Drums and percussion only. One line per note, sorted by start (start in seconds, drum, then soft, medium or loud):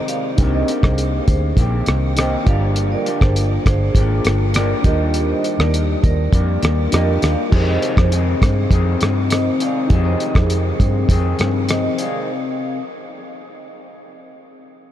0.08 closed hi-hat soft
0.38 kick medium
0.38 closed hi-hat medium
0.68 closed hi-hat soft
0.83 kick medium
0.83 cross-stick medium
0.98 closed hi-hat medium
1.28 kick medium
1.28 closed hi-hat soft
1.57 kick medium
1.57 closed hi-hat medium
1.86 cross-stick medium
1.86 closed hi-hat soft
2.17 cross-stick medium
2.17 closed hi-hat medium
2.47 kick medium
2.47 closed hi-hat soft
2.76 closed hi-hat medium
3.06 closed hi-hat soft
3.21 kick medium
3.21 cross-stick medium
3.36 closed hi-hat medium
3.66 kick medium
3.66 cross-stick medium
3.66 closed hi-hat medium
3.95 kick medium
3.95 closed hi-hat medium
4.25 cross-stick medium
4.25 closed hi-hat soft
4.54 cross-stick medium
4.54 closed hi-hat medium
4.84 kick medium
4.84 closed hi-hat soft
5.14 closed hi-hat medium
5.44 closed hi-hat soft
5.60 cross-stick medium
5.74 closed hi-hat medium
6.04 kick medium
6.04 closed hi-hat soft
6.33 kick medium
6.33 closed hi-hat medium
6.63 cross-stick medium
6.63 closed hi-hat soft
6.92 cross-stick medium
6.92 closed hi-hat medium
7.22 cross-stick medium
7.22 closed hi-hat soft
7.52 kick loud
7.52 crash medium
7.82 closed hi-hat soft
7.97 kick medium
7.97 cross-stick medium
8.12 closed hi-hat medium
8.42 kick medium
8.42 cross-stick medium
8.42 closed hi-hat medium
8.71 kick medium
8.71 closed hi-hat medium
9.01 cross-stick medium
9.01 closed hi-hat soft
9.30 cross-stick medium
9.30 closed hi-hat medium
9.60 closed hi-hat medium
9.90 kick medium
9.90 closed hi-hat medium
10.20 closed hi-hat soft
10.35 kick medium
10.35 cross-stick medium
10.50 closed hi-hat medium
10.80 kick medium
10.80 closed hi-hat soft
11.09 kick medium
11.09 closed hi-hat medium
11.39 cross-stick medium
11.39 closed hi-hat soft
11.69 cross-stick medium
11.69 closed hi-hat medium
11.99 closed hi-hat soft